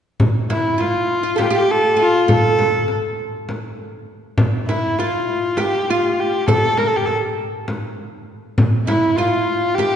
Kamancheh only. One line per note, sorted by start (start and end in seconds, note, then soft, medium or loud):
0.51 0.82 E4 medium
0.81 1.44 F4 medium
1.43 1.56 F4 medium
1.43 1.47 G4 medium
1.54 1.73 G4 medium
1.71 2.02 A4 medium
2.00 2.30 F4 medium
2.31 2.93 A4 medium
4.67 4.99 E4 medium
4.98 5.61 F4 medium
5.59 5.91 G4 medium
5.90 6.21 F4 medium
6.20 6.48 G4 medium
6.49 6.79 A4 medium
6.78 6.89 A#4 medium
6.87 6.98 A4 medium
6.96 7.07 G4 medium
7.06 7.15 A4 medium
8.87 9.18 E4 medium
9.16 9.76 F4 medium
9.75 9.96 G4 medium